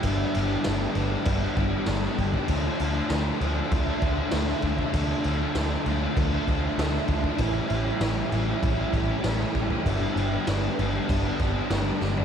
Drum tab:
CC |x-x-x-x-x-x-x-x-|x-x-x-x-x-x-x-x-|x-x-x-x-x-x-x-x-|x-x-x-x-x-x-x-x-|
SD |----o-------oo--|----o-------oo--|----o-------oo--|----o-------oo--|
FT |----------------|----------------|----------------|----------------|
BD |o-------o-o---oo|o-------o-o---oo|o-------o-o---oo|o-------o-o---oo|

CC |x-x-x-x-x-x-x---|
SD |----o-------o-o-|
FT |---------------o|
BD |o-------o-o-----|